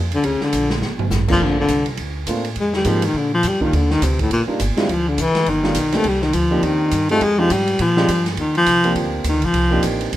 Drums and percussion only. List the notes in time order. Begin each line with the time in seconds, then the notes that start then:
0.12 ride
0.24 kick, ride
0.41 snare
0.53 kick, hi-hat pedal, ride
0.70 snare
0.82 snare
0.99 floor tom
1.11 snare, hi-hat pedal
1.28 kick, crash
1.68 kick, hi-hat pedal, ride
1.86 ride
1.97 kick, ride
2.27 kick, hi-hat pedal, ride
2.45 ride
2.56 kick, ride
2.73 snare
2.85 kick, hi-hat pedal, ride
3.02 ride
3.14 kick
3.43 kick, hi-hat pedal, ride
3.61 kick
3.73 kick, ride
3.91 snare
4.02 kick, hi-hat pedal, ride
4.19 kick, ride
4.31 kick, ride
4.60 kick, hi-hat pedal, ride
4.77 snare, ride
4.89 kick, ride
5.18 kick, hi-hat pedal, ride
5.35 snare, ride
5.46 kick, ride
5.64 snare
5.75 kick, hi-hat pedal, ride
5.92 snare, ride
6.04 kick, ride
6.22 snare
6.33 kick, hi-hat pedal, ride
6.63 kick, ride
6.91 kick, hi-hat pedal, ride
7.09 ride
7.21 kick, ride
7.50 kick, hi-hat pedal, ride
7.68 ride
7.79 kick, ride
7.97 snare
8.09 kick, hi-hat pedal, ride
8.26 snare, ride
8.37 kick, ride
8.55 ride
8.66 kick, hi-hat pedal, ride
8.84 ride
8.96 kick, ride
9.24 kick, hi-hat pedal, ride
9.42 ride
9.54 kick, ride
9.83 kick, hi-hat pedal, ride
10.01 ride
10.12 kick, ride